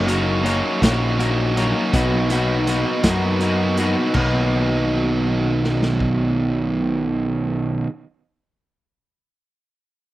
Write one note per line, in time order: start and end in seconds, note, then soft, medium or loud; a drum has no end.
0.00 0.61 F#1 loud
0.06 0.43 F#3 medium
0.06 0.43 A#3 medium
0.06 0.43 C#4 medium
0.06 0.43 D#4 medium
0.06 0.44 F#4 medium
0.06 0.44 A#4 medium
0.06 0.44 C#5 medium
0.06 closed hi-hat medium
0.43 0.81 F#3 medium
0.43 0.82 A#3 medium
0.43 0.81 C#4 medium
0.43 0.82 D#4 medium
0.43 0.82 F#4 medium
0.43 0.82 A#4 medium
0.43 0.82 C#5 medium
0.43 closed hi-hat medium
0.82 1.72 A#1 medium
0.82 1.18 F#3 medium
0.82 1.18 A#3 medium
0.82 1.18 C#4 loud
0.82 1.19 D#4 medium
0.82 1.20 F#4 loud
0.82 1.19 A#4 medium
0.82 1.19 C#5 medium
0.82 kick medium
0.82 snare loud
0.82 closed hi-hat medium
1.18 1.56 F#3 medium
1.18 1.57 A#3 medium
1.18 1.56 C#4 medium
1.18 1.57 D#4 medium
1.18 1.57 F#4 medium
1.18 1.57 A#4 medium
1.18 1.57 C#5 medium
1.18 closed hi-hat medium
1.57 1.94 F#3 medium
1.57 1.94 A#3 medium
1.57 1.91 C#4 medium
1.57 1.94 D#4 medium
1.57 1.94 F#4 medium
1.57 1.94 A#4 loud
1.57 1.92 C#5 medium
1.57 closed hi-hat medium
1.93 2.83 B1 medium
1.93 2.29 B2 medium
1.93 2.29 F#3 medium
1.93 2.30 A#3 medium
1.93 2.30 B3 loud
1.93 2.30 D#4 loud
1.93 2.31 F#4 loud
1.93 2.30 B4 medium
1.93 kick loud
1.93 closed hi-hat medium
2.30 2.66 B2 medium
2.30 2.66 F#3 medium
2.30 2.66 A#3 medium
2.30 2.67 B3 medium
2.30 2.67 D#4 medium
2.30 2.67 F#4 medium
2.30 2.68 B4 medium
2.30 closed hi-hat medium
2.67 3.03 B2 medium
2.67 3.03 F#3 medium
2.67 3.04 A#3 medium
2.67 3.03 B3 medium
2.67 3.04 D#4 medium
2.67 3.04 F#4 medium
2.67 3.04 B4 medium
2.67 closed hi-hat medium
3.04 3.94 F#2 medium
3.04 3.40 B2 medium
3.04 3.41 F#3 medium
3.04 3.41 A#3 medium
3.04 3.40 B3 medium
3.04 3.41 D#4 medium
3.04 3.41 F#4 medium
3.04 3.41 B4 medium
3.04 kick medium
3.04 snare loud
3.04 closed hi-hat medium
3.40 3.77 B2 medium
3.40 3.78 F#3 medium
3.40 3.78 A#3 medium
3.40 3.77 B3 medium
3.40 3.78 D#4 medium
3.40 3.79 F#4 medium
3.40 3.79 B4 medium
3.40 closed hi-hat medium
3.77 4.12 B2 medium
3.77 4.14 F#3 medium
3.77 4.14 A#3 medium
3.77 4.13 B3 medium
3.77 4.13 D#4 medium
3.77 4.14 F#4 medium
3.77 4.14 B4 medium
3.77 closed hi-hat medium
4.14 7.83 B1 medium
4.14 7.87 B2 medium
4.14 7.87 D#3 medium
4.14 7.88 F#3 loud
4.14 7.88 A#3 medium
4.14 7.88 D#4 medium
4.14 7.89 F#4 medium
4.14 kick medium
4.14 crash medium
4.18 7.89 B4 medium
5.64 snare soft
5.82 snare medium
6.00 kick medium